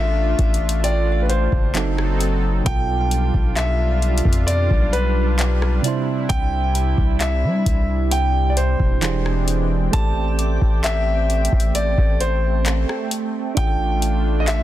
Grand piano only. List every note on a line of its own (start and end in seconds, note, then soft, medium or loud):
0.00 0.87 E5 loud
0.84 1.20 D5 medium
1.22 1.30 B4 medium
1.29 2.16 C5 medium
2.66 3.53 G5 loud
3.56 4.50 E5 loud
4.47 4.94 D5 medium
4.93 5.80 B4 medium
6.29 7.23 G5 loud
7.21 8.14 E5 loud
8.11 8.51 G5 loud
8.50 8.57 D5 medium
8.57 9.44 C5 medium
9.93 10.87 A5 loud
10.84 11.78 E5 loud
11.75 12.22 D5 medium
12.21 13.07 C5 medium
13.57 14.43 G5 loud
14.40 14.47 D#5 medium
14.48 14.63 E5 loud